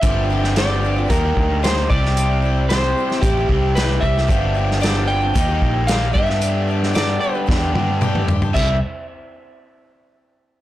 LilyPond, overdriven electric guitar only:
\new Staff \with { instrumentName = "Overdriven electric guitar" } { \time 4/4 \key c \major \tempo 4 = 113 <g, d f g b g'>2 <ees g bes ees' g'>4. <c g c' e' g'>8~ | <c g c' e' g'>2 <c g c' e' g'>8 <c g c' e' g'>4 r8 | <g, d f b f' g'>2 <ees g bes ees' g'>4. <g, d g b d' g'>8~ | <g, d g b d' g'>2 <g, d g b d' g'>8 <g, d g b d' g'>4 r8 |
<c e g c' e'>8 r2. r8 | }